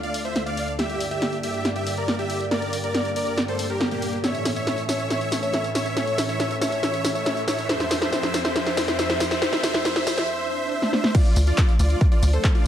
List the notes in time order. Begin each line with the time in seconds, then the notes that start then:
Already playing: D2 D3 A3 F4 A4
0.03 D5 F5, closed hi-hat
0.14 open hi-hat
0.25 C5 E5, closed hi-hat
0.36 snare, closed hi-hat
0.46 D5 F5, closed hi-hat
0.57 open hi-hat
0.68 closed hi-hat
0.79 G2 A#3 G4 D5 E5, snare, closed hi-hat
0.90 closed hi-hat
1.00 open hi-hat
1.11 G4 E5, closed hi-hat
1.22 snare, closed hi-hat
1.33 closed hi-hat
1.43 G4 E5, open hi-hat
1.54 closed hi-hat
1.65 snare, closed hi-hat
1.76 G4 E5, closed hi-hat
1.87 open hi-hat
1.97 A#4 D5, closed hi-hat
2.08 snare, closed hi-hat
2.19 G4 E5, closed hi-hat
2.30 open hi-hat
2.41 closed hi-hat
2.51 A#4 D5, snare, closed hi-hat
2.62 closed hi-hat
2.73 open hi-hat
2.84 A#4 D5, closed hi-hat
2.94 snare, closed hi-hat
3.05 closed hi-hat
3.16 A#4 D5, open hi-hat
3.27 closed hi-hat
3.38 snare, closed hi-hat
3.48 A4 C5, closed hi-hat
3.59 open hi-hat
3.70 G4 A#4, closed hi-hat
3.81 snare, closed hi-hat
3.91 A#3 G4, closed hi-hat
4.02 open hi-hat
4.13 closed hi-hat
4.24 A2 E3 C#4 A4 C#5 E5, snare, closed hi-hat, tambourine, riser
4.35 closed hi-hat, tambourine
4.45 snare, open hi-hat, tambourine
4.56 C#5 E5, closed hi-hat, tambourine
4.67 snare, closed hi-hat, tambourine
4.78 closed hi-hat, tambourine
4.89 C#5 E5, snare, open hi-hat, tambourine
5.00 closed hi-hat, tambourine
5.10 C#5 E5, snare, closed hi-hat, tambourine
5.21 closed hi-hat, tambourine
5.32 snare, open hi-hat, tambourine
5.43 C#5 E5, closed hi-hat, tambourine
5.54 snare, closed hi-hat, tambourine
5.64 closed hi-hat, tambourine
5.75 C#5 E5, snare, open hi-hat, tambourine
5.86 closed hi-hat, tambourine
5.97 C#5 E5, snare, closed hi-hat, tambourine
6.07 closed hi-hat, tambourine
6.18 snare, open hi-hat, tambourine
6.29 C#5 E5, closed hi-hat, tambourine
6.40 snare, closed hi-hat, tambourine
6.51 closed hi-hat, tambourine
6.61 C#5 E5, snare, open hi-hat, tambourine
6.72 closed hi-hat, tambourine
6.83 C#5 E5, snare, closed hi-hat, tambourine
6.94 closed hi-hat, tambourine
7.05 snare, open hi-hat, tambourine
7.15 C#5 E5, closed hi-hat, tambourine
7.26 snare, closed hi-hat, tambourine
7.37 closed hi-hat, tambourine
7.48 C#5 E5, snare, open hi-hat, tambourine
7.58 closed hi-hat, tambourine
7.69 F2 F3 C4 C5 E5, snare, closed hi-hat, tambourine
7.80 snare, closed hi-hat, tambourine
7.91 snare, open hi-hat, tambourine
8.02 C5 E5, snare, closed hi-hat, tambourine
8.12 C5 E5, snare, closed hi-hat, tambourine
8.23 snare, closed hi-hat, tambourine
8.34 snare, open hi-hat, tambourine
8.45 C5 E5, snare, closed hi-hat, tambourine
8.55 C5 E5, snare, closed hi-hat, tambourine
8.66 snare, closed hi-hat, tambourine
8.77 snare, open hi-hat, tambourine
8.88 C5 E5, snare, closed hi-hat, tambourine
8.98 C5 E5, snare, closed hi-hat, tambourine
9.10 snare, closed hi-hat, tambourine
9.20 snare, open hi-hat, tambourine
9.31 C5 E5, snare, closed hi-hat, tambourine
9.42 C5 E5, snare, closed hi-hat, tambourine
9.53 snare, closed hi-hat, tambourine
9.63 C5 E5, snare, open hi-hat, tambourine
9.74 snare, closed hi-hat, tambourine
9.85 C5 E5, snare, closed hi-hat, tambourine
9.96 snare, closed hi-hat, tambourine
10.07 C5 E5, snare, open hi-hat, tambourine
10.18 snare, closed hi-hat, tambourine
10.28 C5 E5, swell
10.50 C5 E5
10.71 C5 E5
10.82 snare
10.93 C5 E5, snare
11.04 snare
11.15 F3 A3 D4 F4 D5, kick, closed hi-hat, crash, tambourine
11.26 closed hi-hat, tambourine
11.36 D2, open hi-hat, tambourine
11.47 F4 D5, closed hi-hat, tambourine
11.58 kick, clap, closed hi-hat, tambourine
11.69 closed hi-hat, tambourine
11.79 D2 F4 D5, open hi-hat, tambourine
11.90 closed hi-hat, tambourine
12.01 kick, closed hi-hat, tambourine
12.12 F4 D5, closed hi-hat, tambourine
12.23 D2, open hi-hat, tambourine
12.33 A4 C5, closed hi-hat, tambourine
12.44 kick, clap, closed hi-hat, tambourine
12.55 F4 D5, closed hi-hat, tambourine